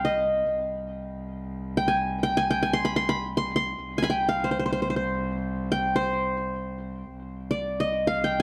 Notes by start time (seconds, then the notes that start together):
Already playing: C2 F5 G5 B5
0.05 D#5
0.55 C2
1.77 G5
1.88 G#5
2.23 G5
2.37 G#5
2.50 G5
2.63 G#5
2.73 C6
2.85 B5
2.96 C6
3.09 B5
3.37 C6
3.56 C6
3.84 C2
3.98 G#5
4.02 G#5 B5
4.10 G5
4.29 F5
4.44 C5
4.51 C5
4.59 C5
4.66 C5
4.73 C5
4.82 C5
4.90 C5
4.96 C5
5.72 G5
5.96 C5
7.13 C2
7.51 D5
7.80 D#5
8.07 F5
8.24 G5